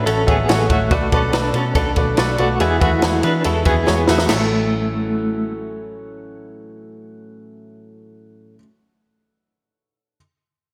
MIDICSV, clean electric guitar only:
0, 0, Header, 1, 2, 480
1, 0, Start_track
1, 0, Key_signature, 3, "major"
1, 0, Tempo, 421644
1, 1038, Time_signature, 4, 2, 24, 8
1, 12222, End_track
2, 0, Start_track
2, 0, Title_t, "Clean electric guitar"
2, 0, Program_c, 0, 27
2, 71, Note_on_c, 0, 69, 76
2, 84, Note_on_c, 0, 61, 66
2, 314, Note_off_c, 0, 69, 0
2, 320, Note_off_c, 0, 61, 0
2, 320, Note_on_c, 0, 68, 79
2, 328, Note_on_c, 0, 59, 66
2, 770, Note_off_c, 0, 68, 0
2, 774, Note_off_c, 0, 59, 0
2, 805, Note_on_c, 0, 66, 75
2, 815, Note_on_c, 0, 57, 60
2, 1029, Note_off_c, 0, 66, 0
2, 1037, Note_off_c, 0, 57, 0
2, 1043, Note_on_c, 0, 66, 89
2, 1051, Note_on_c, 0, 57, 78
2, 1278, Note_on_c, 0, 69, 81
2, 1281, Note_off_c, 0, 66, 0
2, 1285, Note_off_c, 0, 57, 0
2, 1291, Note_on_c, 0, 61, 59
2, 1513, Note_off_c, 0, 69, 0
2, 1517, Note_on_c, 0, 71, 74
2, 1521, Note_off_c, 0, 61, 0
2, 1525, Note_on_c, 0, 62, 65
2, 1757, Note_off_c, 0, 71, 0
2, 1761, Note_on_c, 0, 69, 76
2, 1762, Note_off_c, 0, 62, 0
2, 1772, Note_on_c, 0, 61, 61
2, 1984, Note_off_c, 0, 69, 0
2, 1998, Note_on_c, 0, 69, 86
2, 2006, Note_off_c, 0, 61, 0
2, 2011, Note_on_c, 0, 62, 65
2, 2677, Note_off_c, 0, 69, 0
2, 2684, Note_off_c, 0, 62, 0
2, 2723, Note_on_c, 0, 66, 82
2, 2732, Note_on_c, 0, 57, 58
2, 2962, Note_off_c, 0, 66, 0
2, 2967, Note_off_c, 0, 57, 0
2, 2971, Note_on_c, 0, 68, 90
2, 2980, Note_on_c, 0, 59, 74
2, 3206, Note_off_c, 0, 68, 0
2, 3211, Note_off_c, 0, 59, 0
2, 3211, Note_on_c, 0, 66, 76
2, 3220, Note_on_c, 0, 57, 58
2, 3658, Note_off_c, 0, 66, 0
2, 3663, Note_off_c, 0, 57, 0
2, 3692, Note_on_c, 0, 71, 92
2, 3702, Note_on_c, 0, 62, 75
2, 3927, Note_off_c, 0, 71, 0
2, 3932, Note_off_c, 0, 62, 0
2, 3933, Note_on_c, 0, 69, 74
2, 3945, Note_on_c, 0, 64, 66
2, 4166, Note_off_c, 0, 69, 0
2, 4170, Note_on_c, 0, 68, 78
2, 4173, Note_off_c, 0, 64, 0
2, 4177, Note_on_c, 0, 59, 61
2, 4618, Note_off_c, 0, 68, 0
2, 4622, Note_off_c, 0, 59, 0
2, 4652, Note_on_c, 0, 57, 52
2, 4654, Note_on_c, 0, 66, 60
2, 4877, Note_off_c, 0, 57, 0
2, 4886, Note_off_c, 0, 66, 0
2, 4890, Note_on_c, 0, 57, 85
2, 6281, Note_off_c, 0, 57, 0
2, 12222, End_track
0, 0, End_of_file